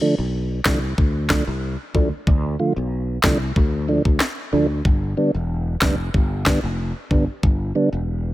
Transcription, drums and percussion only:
0.65 kick, snare, clap
0.98 kick
1.29 kick, snare, clap
1.95 kick
2.27 kick
3.23 kick, snare, clap
3.56 kick
4.05 kick
4.20 snare, clap
4.85 kick
5.81 kick, snare, clap
6.14 kick
6.46 kick, snare, clap
7.11 kick
7.43 kick

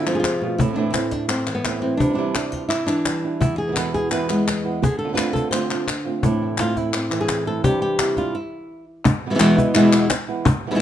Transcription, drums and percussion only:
0.07 clap
0.24 cajon slap, clap
0.60 cajon bass
0.94 cajon slap, clap
1.12 cajon bass, cajon slap
1.29 clap
1.47 clap
1.65 cajon slap, clap
2.00 cajon bass
2.35 cajon slap, clap
2.53 cajon bass, cajon slap
2.71 clap
2.88 clap
3.06 cajon slap, clap
3.41 cajon bass
3.76 cajon slap, clap
3.95 cajon bass, cajon slap
4.11 clap
4.30 clap
4.48 cajon slap, clap
4.84 cajon bass
5.18 cajon slap, clap
5.36 cajon bass
5.53 cajon slap, clap
5.71 cajon slap, clap
5.88 cajon slap, clap
6.23 cajon bass
6.58 cajon slap, clap
6.77 cajon bass, cajon slap
6.94 clap
7.12 cajon slap, clap
7.29 cajon slap, clap
7.64 cajon bass
7.99 cajon slap, clap
8.17 cajon bass, cajon slap
9.05 cajon bass
9.23 cajon slap
9.40 cajon slap, clap
9.58 cajon bass
9.75 clap
9.93 clap
10.10 cajon slap, clap
10.29 cajon slap
10.46 cajon bass
10.64 cajon slap

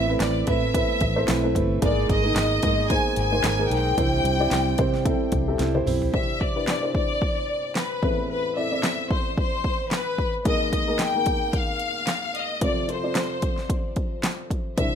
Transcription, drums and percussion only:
0.20 snare, clap, closed hi-hat
0.47 kick, closed hi-hat
0.74 kick, closed hi-hat
1.01 kick, closed hi-hat
1.28 snare, clap, closed hi-hat
1.55 kick, closed hi-hat
1.82 kick, closed hi-hat
2.09 kick, closed hi-hat
2.36 snare, clap, closed hi-hat
2.63 kick, closed hi-hat
2.90 kick, closed hi-hat
3.16 closed hi-hat
3.44 snare, clap, closed hi-hat
3.71 closed hi-hat
3.98 kick, closed hi-hat
4.25 closed hi-hat
4.51 snare, clap, closed hi-hat
4.78 kick, closed hi-hat
4.94 snare
5.05 kick, closed hi-hat
5.32 kick, closed hi-hat
5.59 snare, closed hi-hat
5.75 high tom
5.87 mid tom, open hi-hat
6.02 floor tom
6.14 kick
6.41 kick
6.68 snare, clap
6.95 kick
7.22 kick
7.75 snare, clap
8.03 kick
8.83 snare, clap
9.11 kick
9.38 kick
9.64 kick
9.91 snare, clap
10.18 kick
10.45 kick, closed hi-hat
10.73 kick, closed hi-hat
10.99 snare, clap, closed hi-hat
11.26 kick, closed hi-hat
11.53 kick, closed hi-hat
11.80 closed hi-hat
12.07 snare, clap, closed hi-hat
12.35 closed hi-hat
12.61 kick, closed hi-hat
12.89 closed hi-hat
13.15 snare, clap, closed hi-hat
13.42 kick, closed hi-hat
13.58 snare
13.70 kick, closed hi-hat
13.96 kick, closed hi-hat
14.23 snare, clap, closed hi-hat
14.51 kick, closed hi-hat
14.78 kick, closed hi-hat

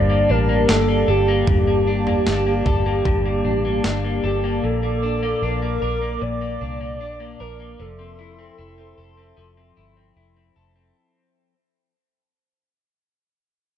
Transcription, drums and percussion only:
0.69 snare
1.47 kick, floor tom
2.07 floor tom
2.27 snare
2.66 kick, floor tom
3.05 kick, floor tom
3.84 snare

